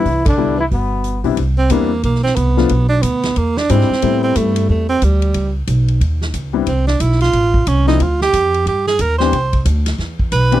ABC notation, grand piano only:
X:1
M:4/4
L:1/8
Q:"Swing" 1/4=181
K:C
V:1 name="Grand piano"
z2 [G,B,DE] z4 [C,G,B,DE] | z2 [G,B,CDE] z4 [F,A,B,DF] | z6 [G,^G,^B,DE] z | [G,A,B,CE]4- [G,A,B,CE] z3 |
z6 z [G,B,CDE] | z6 z [F,A,CDE] | z6 z [E,B,CDG] | z6 z [E,B,CDG] |]